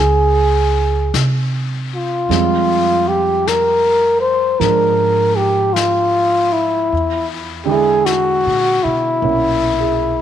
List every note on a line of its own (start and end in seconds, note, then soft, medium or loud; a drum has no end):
0.00 1.09 C#2 medium
0.00 2.30 F#3 soft
0.00 2.31 A#3 soft
0.00 1.17 G#4 medium
0.00 2.31 G#4 soft
0.00 2.31 C#5 soft
1.14 2.26 C3 medium
1.14 brush sweep soft
1.14 snare soft
1.14 hi-hat pedal soft
1.96 3.10 F4 medium
2.29 4.57 F2 medium
2.29 4.58 F3 soft
2.29 6.92 G3 soft
2.29 4.60 G#3 soft
2.29 6.92 C4 soft
2.29 brush sweep soft
2.29 snare soft
3.08 3.49 G4 medium
3.47 4.20 A#4 medium
3.47 brush sweep soft
3.47 snare soft
3.47 hi-hat pedal soft
4.21 4.62 C5 medium
4.60 6.87 G#2 medium
4.60 6.91 F3 soft
4.60 6.92 G#3 soft
4.60 6.93 D4 soft
4.60 5.38 A#4 medium
4.60 brush sweep soft
4.60 snare soft
5.36 5.75 G4 medium
5.74 6.54 F4 medium
5.74 brush sweep soft
5.74 snare soft
5.74 hi-hat pedal soft
6.53 7.32 E4 medium
6.92 8.41 E2 medium
6.92 brush sweep soft
7.66 10.22 D3 soft
7.66 10.22 G#3 soft
7.66 10.22 D4 soft
7.66 8.07 G#4 medium
7.71 9.23 E4 soft
8.06 8.85 F#4 medium
8.06 brush sweep soft
8.06 snare soft
8.06 hi-hat pedal soft
8.46 8.82 A#2 soft
8.84 9.20 B2 medium
8.84 10.22 E4 medium
9.22 10.22 B1 medium
9.22 10.22 A#2 soft
9.22 10.22 C#4 soft
9.22 10.22 E4 soft
9.22 brush sweep soft
9.80 10.22 G#4 soft